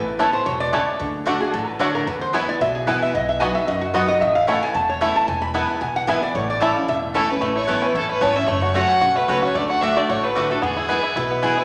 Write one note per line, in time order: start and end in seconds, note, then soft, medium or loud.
0.00 0.27 A1 loud
0.00 0.44 A2 medium
0.00 0.30 B4 medium
0.19 0.45 E3 medium
0.19 0.26 A3 medium
0.19 0.29 B3 medium
0.19 0.45 B3 medium
0.19 0.26 C#4 medium
0.19 0.45 C#4 medium
0.19 0.29 E4 medium
0.19 0.26 E4 medium
0.19 0.46 E4 medium
0.19 0.29 C#5 loud
0.19 0.29 A5 loud
0.33 0.45 C5 loud
0.46 0.81 E1 medium
0.46 0.72 B2 loud
0.46 0.60 C#5 medium
0.60 0.72 D5 loud
0.73 0.99 C#3 medium
0.73 0.79 A3 medium
0.73 0.82 B3 medium
0.73 0.79 C#4 medium
0.73 0.83 E4 loud
0.73 0.80 E4 medium
0.73 0.83 C#5 loud
0.73 0.94 C#5 medium
0.73 0.83 A5 loud
1.00 1.34 D2 loud
1.00 1.24 D3 medium
1.26 1.40 D3 medium
1.26 1.36 A3 medium
1.26 1.40 A3 medium
1.26 1.33 A3 medium
1.26 1.40 D4 medium
1.26 1.33 D4 medium
1.26 1.36 F#4 loud
1.26 1.33 F#4 medium
1.26 1.39 F#4 medium
1.26 1.36 D5 loud
1.26 1.36 F#5 loud
1.40 1.53 D4 medium
1.40 1.52 F#4 medium
1.40 1.53 G#4 medium
1.53 1.88 A1 medium
1.53 2.05 A2 loud
1.53 1.68 A4 medium
1.68 1.80 B4 loud
1.79 2.05 D3 medium
1.79 1.89 A3 loud
1.79 2.05 A3 medium
1.79 1.87 A3 medium
1.79 2.06 D4 medium
1.79 1.87 D4 medium
1.79 1.90 F#4 loud
1.79 2.06 F#4 medium
1.79 1.87 F#4 medium
1.79 1.94 C#5 loud
1.79 1.90 D5 loud
1.79 1.90 F#5 loud
1.95 2.07 A#4 loud
2.07 2.41 E2 medium
2.07 2.58 E2 medium
2.07 2.21 B4 medium
2.21 2.33 C5 loud
2.33 2.48 E3 medium
2.33 2.48 G#3 medium
2.33 2.43 B3 medium
2.33 2.40 B3 medium
2.33 2.48 B3 medium
2.33 2.43 E4 loud
2.33 2.37 E4 medium
2.33 2.47 E4 medium
2.33 2.43 B4 loud
2.33 2.48 C#5 medium
2.33 2.44 G#5 loud
2.49 2.61 B3 medium
2.49 2.60 E4 medium
2.49 2.60 D5 medium
2.60 2.95 B1 medium
2.60 3.12 B2 loud
2.60 2.75 E5 loud
2.75 2.87 G#4 medium
2.87 3.13 E3 medium
2.87 3.13 G#3 medium
2.87 2.97 B3 loud
2.87 2.94 B3 medium
2.87 3.13 B3 medium
2.87 2.97 E4 loud
2.87 2.90 E4 medium
2.87 3.13 E4 loud
2.87 2.97 B4 loud
2.87 3.02 B4 medium
2.87 2.97 G#5 loud
3.02 3.14 E5 loud
3.14 3.48 B1 loud
3.14 3.65 B2 medium
3.14 3.28 D#5 medium
3.29 3.41 E5 medium
3.40 3.55 F#3 medium
3.40 3.50 B3 loud
3.40 3.47 B3 medium
3.40 3.55 B3 medium
3.40 3.47 D#4 medium
3.40 3.55 D#4 medium
3.40 3.50 F#4 medium
3.40 3.48 F#4 medium
3.40 3.55 F#4 medium
3.40 3.50 D#5 medium
3.40 3.54 G#5 loud
3.40 3.51 B5 medium
3.55 3.68 D#4 soft
3.55 3.67 F#4 medium
3.55 3.67 E5 loud
3.67 4.02 F#2 medium
3.67 4.19 F#2 loud
3.67 3.81 D#5 medium
3.81 3.94 F#4 medium
3.94 4.08 F#3 medium
3.94 4.04 B3 medium
3.94 4.01 B3 medium
3.94 4.09 B3 medium
3.94 4.01 D#4 medium
3.94 4.09 D#4 loud
3.94 4.04 F#4 medium
3.94 4.01 F#4 medium
3.94 4.08 F#4 loud
3.94 4.08 B4 medium
3.94 4.04 D#5 loud
3.94 4.04 B5 loud
4.08 4.21 D#4 medium
4.08 4.21 F#4 medium
4.08 4.20 D#5 loud
4.21 4.55 A1 loud
4.21 4.72 A2 medium
4.21 4.35 E5 medium
4.35 4.47 F5 loud
4.47 4.73 E3 medium
4.47 4.57 A3 loud
4.47 4.54 A3 medium
4.47 4.73 A3 medium
4.47 4.74 C#4 medium
4.47 4.54 C#4 medium
4.47 4.57 E4 loud
4.47 4.55 E4 medium
4.47 4.74 E4 loud
4.47 4.57 C#5 loud
4.47 4.62 F#5 medium
4.47 4.58 A5 loud
4.63 4.74 G#5 loud
4.74 5.09 E1 medium
4.74 5.25 E2 loud
4.74 4.89 A5 loud
4.89 5.01 C#5 medium
5.01 5.27 E3 medium
5.01 5.11 A3 loud
5.01 5.08 A3 medium
5.01 5.27 A3 medium
5.01 5.08 C#4 medium
5.01 5.27 C#4 medium
5.01 5.11 E4 medium
5.01 5.08 E4 medium
5.01 5.27 E4 loud
5.01 5.11 C#5 loud
5.01 5.15 E5 medium
5.01 5.11 A5 loud
5.16 5.28 A5 loud
5.28 5.62 E1 loud
5.28 5.79 E2 loud
5.28 5.42 G#5 loud
5.42 5.49 B5 loud
5.54 5.80 E3 medium
5.54 5.80 G#3 medium
5.54 5.64 B3 medium
5.54 5.61 B3 medium
5.54 5.80 B3 medium
5.54 5.64 E4 loud
5.54 5.57 E4 medium
5.54 5.80 E4 medium
5.54 5.64 B4 loud
5.54 5.65 G#5 medium
5.81 6.15 B1 medium
5.81 6.32 B2 medium
5.81 5.95 G#5 medium
5.96 6.08 F#5 loud
6.07 6.21 E3 medium
6.07 6.21 G#3 medium
6.07 6.17 B3 loud
6.07 6.14 B3 medium
6.07 6.22 B3 medium
6.07 6.18 E4 loud
6.07 6.20 E4 loud
6.07 6.11 E4 medium
6.07 6.18 B4 loud
6.07 6.22 E5 medium
6.07 6.18 G#5 loud
6.22 6.34 B3 medium
6.22 6.34 E4 medium
6.22 6.34 D5 loud
6.34 6.69 A1 loud
6.34 6.86 A2 medium
6.34 6.49 C#5 medium
6.50 6.61 D5 loud
6.60 6.75 E3 medium
6.60 6.71 A3 loud
6.60 6.68 A3 medium
6.60 6.75 A3 medium
6.60 6.68 C#4 medium
6.60 6.76 C#4 medium
6.60 6.71 E4 medium
6.60 6.68 E4 medium
6.60 6.75 E4 medium
6.60 6.71 C#5 loud
6.60 6.76 E5 medium
6.60 6.71 A5 loud
6.76 6.88 C#4 soft
6.76 6.88 E4 medium
6.76 6.88 F5 loud
6.88 7.22 E1 medium
6.88 7.39 E2 loud
6.88 6.97 E5 medium
7.14 7.29 E3 medium
7.14 7.24 A3 loud
7.14 7.21 A3 medium
7.14 7.29 A3 medium
7.14 7.21 C#4 medium
7.14 7.29 C#4 medium
7.14 7.24 E4 loud
7.14 7.22 E4 medium
7.14 7.28 E4 medium
7.14 7.31 A4 medium
7.14 7.25 C#5 loud
7.14 7.25 A5 loud
7.29 7.42 C#4 medium
7.29 7.41 E4 medium
7.29 7.55 B4 medium
7.41 7.76 A1 medium
7.41 7.93 A2 medium
7.41 7.68 A3 medium
7.56 7.92 E4 medium
7.56 7.84 C#5 medium
7.67 7.94 E3 medium
7.67 8.09 A3 medium
7.67 7.77 B3 medium
7.67 7.94 B3 medium
7.67 7.94 C#4 medium
7.67 7.78 E4 medium
7.67 7.95 E4 medium
7.67 7.78 C#5 loud
7.67 7.78 A5 loud
7.82 8.19 C#4 medium
7.82 7.95 B4 medium
7.94 8.17 A1 medium
7.94 8.46 E2 medium
7.94 8.33 E4 medium
7.94 8.09 A4 medium
8.09 8.47 A3 medium
8.09 8.23 B4 loud
8.21 8.44 G#1 medium
8.21 8.35 E3 medium
8.21 8.31 B3 medium
8.21 8.36 B3 medium
8.21 8.48 C#4 medium
8.21 8.36 C#4 medium
8.21 8.31 E4 medium
8.21 8.34 E4 medium
8.21 8.38 C#5 medium
8.21 8.32 C#5 medium
8.21 8.32 A5 loud
8.35 8.48 C#4 soft
8.35 8.48 E4 medium
8.35 8.49 E5 medium
8.47 8.83 F#1 medium
8.47 8.99 F#2 medium
8.47 8.73 A3 medium
8.47 8.62 C#5 loud
8.62 8.99 F#4 medium
8.62 8.77 C#5 medium
8.74 9.01 F#3 medium
8.74 8.85 A3 medium
8.74 9.13 A3 medium
8.74 9.01 A3 medium
8.74 9.01 C#4 medium
8.74 8.85 F#4 loud
8.74 9.01 F#4 loud
8.74 8.85 C#5 medium
8.74 8.85 F#5 medium
8.74 9.18 F#5 loud
8.89 9.26 C#4 medium
9.01 9.25 B1 medium
9.01 9.53 C#3 loud
9.01 9.40 F#4 medium
9.16 9.53 A3 medium
9.16 9.29 B4 loud
9.28 9.51 C#2 medium
9.28 9.54 F#3 medium
9.28 9.38 A3 medium
9.28 9.54 A3 medium
9.28 9.56 C#4 medium
9.28 9.55 C#4 loud
9.28 9.39 F#4 medium
9.28 9.55 F#4 medium
9.28 9.43 B4 loud
9.28 9.39 C#5 loud
9.28 9.39 F#5 loud
9.42 9.55 F#4 medium
9.42 9.57 C#5 medium
9.55 9.90 D2 medium
9.55 9.80 D3 medium
9.55 9.94 A3 medium
9.55 9.69 D5 loud
9.69 10.07 F#4 medium
9.69 9.83 F#5 loud
9.81 9.96 D3 medium
9.81 9.96 A3 medium
9.81 9.92 A3 medium
9.81 10.21 D4 medium
9.81 9.96 D4 medium
9.81 9.92 F#4 medium
9.81 9.95 F#4 loud
9.81 9.93 D5 loud
9.81 9.98 E5 loud
9.81 9.93 F#5 loud
9.97 10.34 A3 medium
9.97 10.09 D4 soft
9.97 10.09 F#4 medium
9.97 10.11 D5 loud
10.09 10.44 A1 medium
10.09 10.61 A2 medium
10.09 10.35 F#4 medium
10.09 10.25 C#5 loud
10.23 10.60 F#3 medium
10.23 10.52 B4 loud
10.35 10.50 D3 medium
10.35 10.45 A3 medium
10.35 10.50 A3 medium
10.35 10.51 D4 medium
10.35 10.46 F#4 loud
10.35 10.63 F#4 medium
10.35 10.49 F#4 medium
10.35 10.46 D5 loud
10.35 10.46 F#5 loud
10.50 10.62 A3 medium
10.50 10.63 D4 soft
10.50 10.62 F#4 medium
10.50 10.63 A4 medium
10.62 10.97 E2 medium
10.62 11.14 E2 medium
10.62 11.01 B3 medium
10.62 11.19 G#4 loud
10.77 10.88 E4 medium
10.88 11.15 E3 medium
10.88 11.16 G#3 medium
10.88 10.99 B3 medium
10.88 11.16 B3 medium
10.88 10.99 E4 medium
10.88 11.02 E4 medium
10.88 11.16 E4 medium
10.88 10.99 B4 loud
10.88 10.99 G#5 medium
11.03 11.15 E4 medium
11.16 11.50 B1 medium
11.16 11.64 B2 loud
11.16 11.41 E4 medium
11.16 11.45 B4 medium
11.30 11.64 B3 medium
11.42 11.57 E3 medium
11.42 11.57 G#3 medium
11.42 11.53 B3 medium
11.42 11.57 B3 medium
11.42 11.56 E4 medium
11.42 11.53 E4 loud
11.42 11.56 E4 medium
11.42 11.59 G#4 medium
11.42 11.53 B4 loud
11.42 11.53 G#5 loud
11.57 11.64 B3 soft
11.57 11.64 E4 medium
11.57 11.64 B4 loud